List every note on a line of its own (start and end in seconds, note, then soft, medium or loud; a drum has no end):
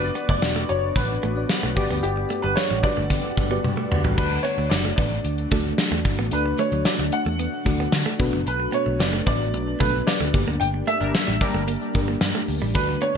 0.00 1.73 B3 medium
0.00 0.60 D4 medium
0.00 4.14 D4 medium
0.00 0.60 F#4 medium
0.00 1.73 F#4 medium
0.00 1.75 F#4 medium
0.00 0.31 B4 loud
0.00 0.60 B4 medium
0.00 0.61 D5 medium
0.00 1.73 D5 medium
0.00 muted clean electric guitar stroke soft
0.15 0.25 B3 medium
0.15 closed hi-hat medium
0.29 0.39 F#1 loud
0.29 0.39 A3 medium
0.29 0.71 D5 loud
0.29 kick medium
0.42 0.63 E1 medium
0.42 muted clean electric guitar stroke soft
0.42 snare loud
0.42 closed hi-hat medium
0.56 0.66 A3 medium
0.68 0.90 F#1 medium
0.68 0.79 B3 medium
0.68 1.28 D4 medium
0.68 1.28 F#4 medium
0.68 1.29 B4 medium
0.68 0.97 C#5 medium
0.68 0.76 C#5 medium
0.68 closed hi-hat medium
0.76 1.32 D5 medium
0.96 1.16 A1 medium
0.96 1.73 B4 medium
0.96 kick medium
0.96 closed hi-hat medium
1.23 1.44 A1 medium
1.23 1.33 A3 medium
1.23 closed hi-hat medium
1.36 1.76 D4 medium
1.36 1.77 F#4 medium
1.36 1.75 B4 medium
1.36 1.76 D5 medium
1.49 snare loud
1.49 closed hi-hat medium
1.63 1.74 B1 medium
1.63 1.73 A3 medium
1.76 1.87 G1 loud
1.76 2.53 G2 medium
1.76 4.16 G3 medium
1.76 4.14 B3 medium
1.76 2.71 G4 medium
1.76 4.14 G4 medium
1.76 4.16 A4 medium
1.76 2.71 B4 medium
1.76 4.16 B4 medium
1.76 4.14 D5 medium
1.76 2.72 D5 loud
1.76 2.71 F#5 loud
1.76 4.16 F#5 medium
1.76 muted clean electric guitar stroke soft
1.76 kick loud
1.76 open hi-hat medium
1.91 2.01 D2 medium
1.91 2.00 B3 medium
2.03 2.24 G1 loud
2.03 2.45 G4 medium
2.03 closed hi-hat medium
2.17 muted clean electric guitar stroke soft
2.30 2.40 A3 medium
2.30 closed hi-hat medium
2.42 2.54 G1 medium
2.42 2.53 G3 medium
2.42 2.57 B4 loud
2.56 2.84 C#5 medium
2.56 snare loud
2.56 closed hi-hat medium
2.70 2.81 A1 medium
2.70 2.80 G3 medium
2.70 closed hi-hat medium
2.83 3.43 F#4 medium
2.83 3.43 G4 medium
2.83 3.43 B4 medium
2.83 3.87 D5 loud
2.83 3.43 D5 medium
2.83 muted clean electric guitar stroke soft
2.83 kick medium
2.83 closed hi-hat medium
2.97 3.18 G1 medium
2.97 3.07 A3 medium
3.10 3.20 B3 medium
3.10 kick medium
3.10 closed hi-hat medium
3.37 3.58 G1 medium
3.37 muted clean electric guitar stroke soft
3.37 kick medium
3.37 closed hi-hat medium
3.51 3.61 B3 medium
3.51 4.10 F#4 medium
3.51 4.10 G4 medium
3.51 4.10 B4 medium
3.51 4.11 D5 loud
3.64 3.74 G2 loud
3.64 high tom medium
3.77 3.87 A3 medium
3.91 4.01 D2 medium
3.91 muted clean electric guitar stroke soft
3.91 mid tom medium
4.04 4.15 A1 medium
4.04 4.14 G3 medium
4.04 floor tom medium
4.17 4.38 D2 loud
4.17 4.94 D3 medium
4.17 5.12 A3 medium
4.17 10.30 A3 medium
4.17 5.13 D4 medium
4.17 8.16 D4 medium
4.17 5.13 F#4 medium
4.17 8.16 F#4 medium
4.17 5.13 A4 medium
4.17 4.45 B4 medium
4.17 5.13 D5 medium
4.17 kick loud
4.17 crash loud
4.32 muted clean electric guitar stroke soft
4.43 4.55 B3 medium
4.43 4.71 C#5 medium
4.43 closed hi-hat medium
4.58 4.68 D2 medium
4.58 4.68 A3 medium
4.70 4.91 F#1 medium
4.70 4.95 D5 loud
4.70 muted clean electric guitar stroke soft
4.70 snare loud
4.70 closed hi-hat medium
4.70 tambourine medium
4.85 4.95 A3 medium
4.96 5.18 A1 medium
4.96 5.08 B3 medium
4.96 6.00 D5 medium
4.96 kick loud
4.96 closed hi-hat medium
5.25 5.45 D2 loud
5.25 closed hi-hat loud
5.38 closed hi-hat soft
5.51 5.72 D2 medium
5.51 6.22 A3 medium
5.51 5.62 A3 medium
5.51 6.23 D4 medium
5.51 6.23 F#4 medium
5.51 6.23 A4 medium
5.51 6.23 D5 medium
5.51 kick medium
5.51 closed hi-hat medium
5.78 snare loud
5.78 closed hi-hat medium
5.78 tambourine medium
5.92 6.02 E2 medium
5.92 6.02 A3 medium
6.05 6.15 G1 medium
6.05 muted clean electric guitar stroke soft
6.05 kick medium
6.05 closed hi-hat medium
6.19 6.29 A1 medium
6.19 6.29 B3 medium
6.31 6.52 D2 loud
6.31 7.08 D3 medium
6.31 7.26 A3 medium
6.31 7.27 D4 medium
6.31 7.27 F#4 medium
6.31 7.27 A4 medium
6.31 6.60 B4 medium
6.31 7.27 D5 medium
6.31 closed hi-hat loud
6.46 muted clean electric guitar stroke soft
6.58 6.69 A3 medium
6.58 6.87 C#5 medium
6.58 closed hi-hat medium
6.72 6.82 D2 loud
6.72 6.82 F#3 medium
6.72 closed hi-hat medium
6.85 7.14 D5 medium
6.85 snare loud
6.85 closed hi-hat medium
6.85 tambourine medium
6.99 7.09 D2 medium
6.99 7.09 F#3 medium
7.12 8.16 F#5 medium
7.12 muted clean electric guitar stroke soft
7.12 closed hi-hat medium
7.26 7.46 E2 medium
7.26 7.36 A3 medium
7.39 7.49 B3 medium
7.39 closed hi-hat medium
7.65 7.86 D2 loud
7.65 8.19 A3 medium
7.65 8.18 D4 medium
7.65 8.18 F#4 medium
7.65 8.19 A4 medium
7.65 8.20 D5 medium
7.65 muted clean electric guitar stroke soft
7.65 kick medium
7.65 closed hi-hat medium
7.80 7.90 B3 medium
7.92 8.03 D3 loud
7.92 snare loud
7.92 closed hi-hat medium
7.92 tambourine medium
8.06 8.16 A3 medium
8.19 8.30 B1 loud
8.19 8.96 B2 medium
8.19 9.14 B3 medium
8.19 10.32 B3 medium
8.19 9.14 D4 medium
8.19 10.32 D4 medium
8.19 9.14 F#4 medium
8.19 9.15 A4 medium
8.19 9.15 B4 loud
8.19 muted clean electric guitar stroke soft
8.19 kick loud
8.19 closed hi-hat medium
8.33 8.43 F#1 medium
8.33 8.43 F#3 medium
8.46 8.66 B1 loud
8.46 8.75 B4 medium
8.46 closed hi-hat medium
8.60 muted clean electric guitar stroke soft
8.72 8.82 B3 medium
8.72 9.01 C#5 medium
8.72 closed hi-hat medium
8.86 8.97 B1 loud
8.86 8.96 A3 medium
9.00 9.20 F#1 loud
9.00 9.26 D5 medium
9.00 muted clean electric guitar stroke soft
9.00 snare loud
9.00 closed hi-hat medium
9.00 tambourine medium
9.13 9.23 A3 medium
9.26 9.53 A1 medium
9.26 9.36 B3 medium
9.26 9.77 D5 loud
9.26 kick loud
9.26 closed hi-hat medium
9.53 9.74 B1 loud
9.53 closed hi-hat medium
9.80 10.01 B1 medium
9.80 9.90 A3 medium
9.80 10.34 B3 medium
9.80 10.32 D4 medium
9.80 10.34 F#4 medium
9.80 10.34 A4 medium
9.80 10.08 B4 medium
9.80 10.34 B4 medium
9.80 kick medium
9.80 closed hi-hat medium
10.07 10.62 D5 medium
10.07 snare loud
10.07 closed hi-hat medium
10.07 tambourine medium
10.20 10.31 D2 medium
10.20 10.30 A3 medium
10.33 10.44 G1 loud
10.33 11.10 G2 medium
10.33 12.73 G3 medium
10.33 11.28 A#3 medium
10.33 12.73 A#3 medium
10.33 11.28 D4 medium
10.33 12.73 D4 medium
10.33 11.29 G4 medium
10.33 11.29 A#4 medium
10.33 11.29 D5 medium
10.33 muted clean electric guitar stroke soft
10.33 kick loud
10.33 closed hi-hat medium
10.47 10.57 D2 medium
10.47 10.57 A#3 medium
10.60 10.81 G1 loud
10.60 10.66 G5 loud
10.60 closed hi-hat loud
10.74 muted clean electric guitar stroke soft
10.87 10.97 A3 medium
10.87 11.43 E5 loud
10.87 closed hi-hat medium
11.01 11.11 G1 medium
11.01 11.11 G3 medium
11.01 11.12 G3 medium
11.01 11.12 D4 medium
11.01 11.12 A#4 loud
11.15 snare loud
11.15 closed hi-hat medium
11.15 tambourine medium
11.27 11.38 A1 medium
11.27 11.37 G3 medium
11.41 11.64 G3 medium
11.41 11.64 D4 loud
11.41 11.64 A#4 loud
11.41 12.44 D5 medium
11.41 muted clean electric guitar stroke soft
11.41 kick loud
11.41 closed hi-hat medium
11.54 11.75 G1 loud
11.54 11.64 A3 medium
11.68 11.78 A#3 medium
11.68 closed hi-hat loud
11.94 12.15 G1 medium
11.94 12.65 A#3 medium
11.94 12.66 D4 medium
11.94 12.66 G4 medium
11.94 12.66 A#4 medium
11.94 12.66 D5 medium
11.94 muted clean electric guitar stroke soft
11.94 kick medium
11.94 closed hi-hat medium
12.08 12.18 A#3 medium
12.21 12.32 G2 loud
12.21 snare loud
12.21 closed hi-hat medium
12.21 tambourine medium
12.35 12.45 A3 medium
12.48 12.58 D2 medium
12.48 muted clean electric guitar stroke soft
12.48 open hi-hat medium
12.62 12.72 A1 medium
12.62 12.71 G3 medium
12.74 12.95 D2 loud
12.74 13.17 D3 medium
12.74 13.17 F#3 medium
12.74 13.17 A3 medium
12.74 13.17 D4 medium
12.74 13.17 F#4 medium
12.74 13.17 A4 medium
12.74 13.02 B4 medium
12.74 13.17 D5 medium
12.74 kick loud
12.74 closed hi-hat medium
12.89 muted clean electric guitar stroke soft
13.01 13.12 B3 medium
13.01 13.17 C#5 loud
13.01 closed hi-hat medium